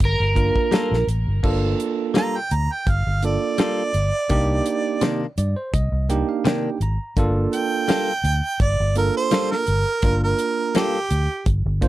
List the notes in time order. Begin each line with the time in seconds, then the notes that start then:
0.00 G1, kick, closed hi-hat
0.05 A#4
0.20 G1
0.35 A#3 D4 F4 A#4, kick, closed hi-hat
0.56 kick
0.71 G3 A#3 F4 A4, snare, closed hi-hat
0.91 A#1, snare
1.07 A1, closed hi-hat
1.27 G1
1.43 G1 A#3 D4 F4 A4, kick, crash
1.80 closed hi-hat
2.14 G3 A#3 F4 A4 A#5, snare, closed hi-hat
2.37 G5
2.51 D2 A#5, closed hi-hat
2.72 G5
2.87 G1 F5, kick, closed hi-hat
3.07 G1
3.23 A#3 D4 F4 A4 D5, closed hi-hat
3.58 G3 A#3 F4 A4, snare, closed hi-hat
3.94 G1, closed hi-hat
4.29 C2 A#3 D4 D#4 G4, kick, closed hi-hat
4.66 closed hi-hat
5.01 C3 D#3 A#3 D4, snare, closed hi-hat
5.38 G2 D5, closed hi-hat
5.56 C5
5.73 C2 D#5, kick, closed hi-hat
5.92 C2
6.09 A#3 D4 D#4 G4 G5, closed hi-hat
6.29 F5
6.45 C3 D#3 A#3 D4 G5, snare, closed hi-hat
6.80 G#1 A#5, closed hi-hat
7.17 G1 A#3 D4 F4 A4, kick, closed hi-hat
7.53 G5, closed hi-hat
7.88 G3 A#3 F4 A4, snare, closed hi-hat
8.24 D2, closed hi-hat
8.60 G1 D5, kick, closed hi-hat
8.80 G1
8.95 A#3 D4 F4 A4 A#4, closed hi-hat
9.17 C5
9.31 G3 A#3 F4 A4, snare, closed hi-hat
9.51 A#4, snare
9.67 G1, closed hi-hat
10.02 G1 A#3 D4 F4 A#4, kick, closed hi-hat
10.24 A#4
10.39 closed hi-hat
10.75 G3 A#3 F4 G4 A4, snare, closed hi-hat
11.10 D2, closed hi-hat
11.46 G1, kick, closed hi-hat
11.66 G1
11.81 A#3 D4 F4 C5, kick, closed hi-hat